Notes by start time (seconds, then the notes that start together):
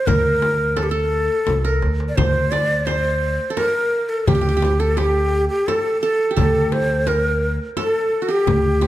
Already playing: C5
0.07 D2 A#4, frame drum, darbuka dum
0.42 darbuka tek, frame drum
0.59 darbuka ka
0.76 A4, darbuka tek, frame drum
0.83 G4
0.90 A4
1.47 C2, darbuka tek, frame drum
1.65 A#4, darbuka ka
1.82 D2, darbuka tek
2.00 darbuka ka
2.09 D5
2.16 D2 C5, frame drum, darbuka dum
2.51 D5, darbuka tek, frame drum
2.86 C5, darbuka tek, frame drum
3.50 A4
3.57 A#4, darbuka tek, frame drum
3.93 darbuka ka
4.09 A4
4.27 D2 G4, frame drum, darbuka dum
4.35 G4
4.41 G4
4.49 G4
4.57 G4
4.62 G4, darbuka tek, frame drum
4.80 A4
4.97 G4, darbuka tek, frame drum
5.49 G4
5.67 A4, darbuka tek, frame drum
6.01 A4, darbuka ka
6.31 G4
6.36 D2 A4, darbuka dum, frame drum
6.72 C5, darbuka tek, frame drum
7.07 A#4, darbuka tek, frame drum
7.77 A4, darbuka tek, frame drum
8.13 darbuka ka
8.22 F#4
8.28 G4
8.47 D2, darbuka dum, frame drum
8.81 G4, darbuka tek, frame drum